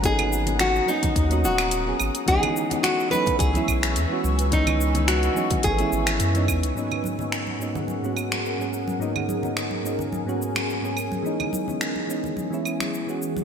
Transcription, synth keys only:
X:1
M:4/4
L:1/16
Q:"Swing 16ths" 1/4=107
K:G#m
V:1 name="Synth keys"
[F,A,B,CD]3 [F,A,B,CD]3 [F,A,B,CD]3 [F,A,B,CF]4 [F,A,B,CG]3 | [E,G,B,CD]3 [E,G,B,CD]3 [E,G,B,CD]3 [E,G,B,CE]4 [E,G,B,CF]3 | [E,G,B,CD]3 [E,G,B,CD]3 [E,G,B,CD]3 [E,G,B,CE]4 [E,G,B,CD]3 | [G,,F,A,B,CD]3 [G,,F,A,B,CD]3 [G,,F,A,B,CD]3 [G,,F,A,B,CF]4 [G,,F,A,B,CG]3 |
[G,,F,A,B,CD]3 [G,,F,A,B,CD]3 [G,,F,A,B,CD]3 [G,,F,A,B,CF]4 [G,,F,A,B,CG]3 | [E,G,B,CD]3 [E,G,B,CD]3 [E,G,B,CD]3 [E,G,B,CE]4 [E,G,B,CF]3 |]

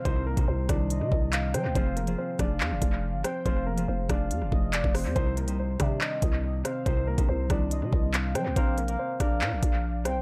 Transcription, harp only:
X:1
M:4/4
L:1/16
Q:1/4=141
K:Cm
V:1 name="Harp"
[C,G,Ec]2 z [C,G,Ec]2 z [C,E,G,c]4- [C,E,G,c] z4 z | [F,FAc]2 z [F,FAc]2 z [F,FAc]4- [F,FAc] z4 z | [F,FAc]2 z [F,FAc]2 z [F,FAc]4- [F,FAc] z4 z | [C,G,Ec]2 z [C,G,Ec]2 z [C,E,G,c]4- [C,E,G,c] z4 z |
[C,G,Ec]2 z [C,G,Ec]2 z [C,E,G,c]4- [C,E,G,c] z4 z | [B,Bdf]2 z [B,Bdf]2 z [B,Bdf]4- [B,Bdf] z4 z |]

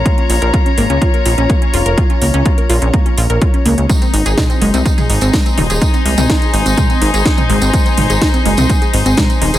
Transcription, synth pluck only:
X:1
M:4/4
L:1/16
Q:1/4=125
K:Abmix
V:1 name="Synth pluck"
B, D F B F D B, D F B F D B, D F B | F D B, D F B F D B, D F B F D B, D | A, C E A E C A, C E A E C A, C E A | E C A, C E A E C A, C E A E C A, C |
A, C E A E C A, C E A E C A, C E A |]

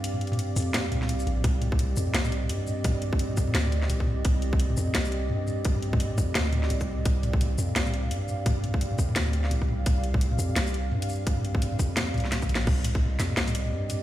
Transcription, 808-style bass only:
X:1
M:4/4
L:1/8
Q:"Swing 16ths" 1/4=171
K:Cm
V:1 name="808-style bass" clef=bass
G,,3 F,,2 C,,2 B,,, | C,,3 F,, C,,2 G,,2- | G,,3 F,, D,,2 C,,2 | C,,3 F,, C,,2 G,,2- |
G,,3 F,, D,,2 C,,2 | C,,3 F,, C,,2 G,,2- | G,,3 F,, D,,2 C,,2 | C,,3 F,, C,,2 G,,2- |
G,,3 F,,2 C,,2 B,,, | C,,3 F,, C,,2 G,,2 |]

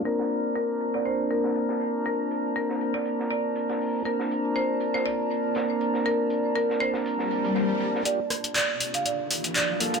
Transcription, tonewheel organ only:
X:1
M:4/4
L:1/16
Q:"Swing 16ths" 1/4=120
K:Bb
V:1 name="Tonewheel organ"
[B,CDB]16- | [B,CDB]16 | [B,CDB]16- | [B,CDB]16 |
[B,DFG] z12 z [B,DFA]2 |]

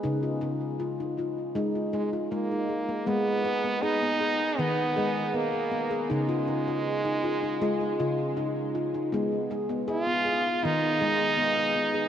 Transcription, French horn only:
X:1
M:4/4
L:1/8
Q:1/4=79
K:none
V:1 name="French horn"
z4 z _A, _B,2 | _C2 _E2 C2 _B,2 | _A,6- A, z | z2 F2 _E4 |]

